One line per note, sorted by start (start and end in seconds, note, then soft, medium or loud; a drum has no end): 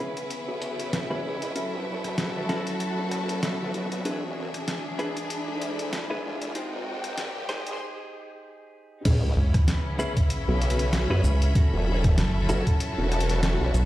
0.00 1.53 C#3 medium
0.00 1.53 B3 medium
0.00 4.06 C#4 medium
0.00 0.17 C#4 medium
0.00 0.17 E4 medium
0.00 4.01 E4 medium
0.00 0.17 G#4 medium
0.00 1.56 G#4 medium
0.00 0.17 B4 medium
0.00 2.56 B4 medium
0.00 riser medium
0.17 6.56 E5 medium
0.17 closed hi-hat medium
0.30 closed hi-hat medium
0.48 1.08 B1 loud
0.62 closed hi-hat medium
0.80 closed hi-hat medium
0.93 snare loud
0.93 closed hi-hat medium
1.10 1.22 F#2 medium
1.10 1.52 C#4 medium
1.10 1.52 E4 medium
1.10 1.52 G#4 medium
1.10 1.52 B4 loud
1.24 1.53 C#2 loud
1.42 closed hi-hat medium
1.55 4.03 F#3 medium
1.55 1.73 C#4 medium
1.55 1.73 E4 medium
1.55 1.73 F#4 medium
1.55 4.03 A4 medium
1.55 1.73 A4 medium
1.55 closed hi-hat medium
1.73 2.16 E1 loud
1.79 5.06 F#4 medium
2.04 cross-stick soft
2.04 closed hi-hat medium
2.18 2.47 F#1 medium
2.18 snare loud
2.18 closed hi-hat medium
2.49 2.64 F#1 loud
2.49 4.02 C#4 medium
2.49 4.02 E4 medium
2.49 4.02 F#4 medium
2.49 4.02 A4 medium
2.49 snare medium
2.49 closed hi-hat soft
2.67 4.05 A5 medium
2.67 closed hi-hat medium
2.80 closed hi-hat medium
2.98 3.58 E1 loud
3.11 cross-stick soft
3.11 closed hi-hat medium
3.29 closed hi-hat medium
3.43 snare loud
3.43 closed hi-hat medium
3.60 3.72 B1 medium
3.74 4.03 B1 loud
3.74 closed hi-hat soft
3.92 closed hi-hat medium
4.05 4.35 E1 loud
4.05 6.53 E3 medium
4.05 6.55 D4 medium
4.05 4.23 D4 medium
4.05 6.53 D4 medium
4.05 4.23 E4 medium
4.05 6.53 G#4 medium
4.05 4.23 G#4 medium
4.05 4.23 B4 medium
4.05 closed hi-hat medium
4.37 4.52 E1 loud
4.54 cross-stick soft
4.54 closed hi-hat medium
4.68 7.81 G#3 medium
4.68 snare loud
4.68 closed hi-hat medium
4.99 5.17 D4 medium
4.99 5.17 E4 medium
4.99 5.17 G#4 medium
4.99 5.17 B4 loud
4.99 closed hi-hat soft
5.17 6.55 B5 medium
5.17 closed hi-hat medium
5.30 closed hi-hat medium
5.48 6.08 D2 loud
5.62 closed hi-hat medium
5.79 closed hi-hat medium
5.93 snare loud
5.93 closed hi-hat medium
6.10 6.22 G#1 medium
6.10 6.52 D4 medium
6.10 6.52 E4 medium
6.10 6.52 G#4 medium
6.10 6.52 B4 medium
6.24 6.53 E1 loud
6.42 closed hi-hat medium
6.55 7.79 G#3 medium
6.55 7.79 C4 medium
6.55 7.80 D#4 medium
6.55 6.73 D#4 medium
6.55 6.73 G4 medium
6.55 6.73 G#4 medium
6.55 6.73 C5 medium
6.55 7.79 G5 medium
6.55 closed hi-hat medium
6.73 7.16 D#1 loud
7.04 cross-stick soft
7.04 closed hi-hat medium
7.09 7.80 G5 medium
7.18 7.47 G#1 loud
7.18 snare loud
7.18 closed hi-hat medium
7.49 7.64 G#1 loud
7.49 9.02 D#4 medium
7.49 9.02 G4 medium
7.49 9.02 G#4 medium
7.49 9.02 C5 loud
7.49 snare medium
7.49 closed hi-hat soft
7.66 7.78 G#1 medium
7.66 7.80 C6 medium
7.66 closed hi-hat medium
9.05 9.35 C#2 loud
9.05 11.53 C#3 medium
9.05 11.53 B3 medium
9.05 9.23 C#4 medium
9.05 13.85 C#4 medium
9.05 11.53 E4 medium
9.05 9.23 E4 medium
9.05 9.23 G#4 medium
9.05 9.23 B4 medium
9.05 kick loud
9.05 closed hi-hat medium
9.05 crash loud
9.05 sub drop medium
9.37 9.52 C#2 loud
9.54 kick loud
9.54 cross-stick soft
9.54 closed hi-hat medium
9.68 snare loud
9.68 closed hi-hat medium
9.99 10.17 C#4 medium
9.99 10.17 E4 medium
9.99 10.17 G#4 medium
9.99 10.17 B4 loud
9.99 shaker medium
10.17 13.85 E5 medium
10.17 12.56 B5 medium
10.17 kick medium
10.17 closed hi-hat medium
10.30 closed hi-hat medium
10.48 11.08 B1 loud
10.62 closed hi-hat medium
10.70 closed hi-hat medium
10.79 closed hi-hat medium
10.93 snare loud
10.93 closed hi-hat medium
11.10 11.22 F#2 medium
11.10 11.52 C#4 medium
11.10 11.52 E4 medium
11.10 11.52 G#4 medium
11.10 11.52 B4 loud
11.24 11.53 C#2 loud
11.24 shaker medium
11.42 closed hi-hat medium
11.55 13.85 F#3 medium
11.55 11.73 C#4 medium
11.55 13.85 E4 medium
11.55 11.73 E4 medium
11.55 11.73 F#4 medium
11.55 13.85 A4 medium
11.55 11.73 A4 medium
11.55 kick loud
11.55 closed hi-hat medium
11.73 12.16 E1 loud
12.04 kick loud
12.04 cross-stick soft
12.04 closed hi-hat medium
12.18 12.47 F#1 loud
12.18 snare loud
12.18 closed hi-hat medium
12.36 13.85 F#4 medium
12.49 12.64 F#1 loud
12.49 13.85 C#4 medium
12.49 13.85 E4 medium
12.49 13.85 F#4 medium
12.49 13.85 A4 medium
12.49 closed hi-hat soft
12.49 shaker medium
12.63 13.85 A5 medium
12.63 kick medium
12.63 closed hi-hat medium
12.80 closed hi-hat medium
12.98 13.58 E1 loud
13.12 cross-stick soft
13.12 closed hi-hat medium
13.20 closed hi-hat medium
13.29 snare soft
13.29 closed hi-hat medium
13.43 snare loud
13.43 closed hi-hat medium
13.61 13.72 B1 medium
13.74 13.85 B1 loud
13.74 closed hi-hat soft
13.74 shaker medium